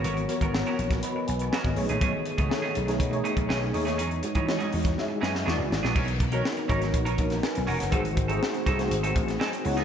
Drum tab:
CC |----------------|----------------|----------------|x---------------|
HH |xxxx-xxxx-xx-xox|x-xx--xxxxxx--ox|xxxx-xox--------|-xxx-xxxxxxx-xox|
SD |----o--o----o---|----o--o----o--o|----o--oo-ooo-oo|----o--o---oo--o|
BD |---o---o-----o--|o--o----o--o----|---o---o--------|o-o---o-o-o-----|

CC |----------------|
HH |xxxx-xxxxxxx-xox|
SD |----o--o---oo--o|
BD |o-o---o---o-----|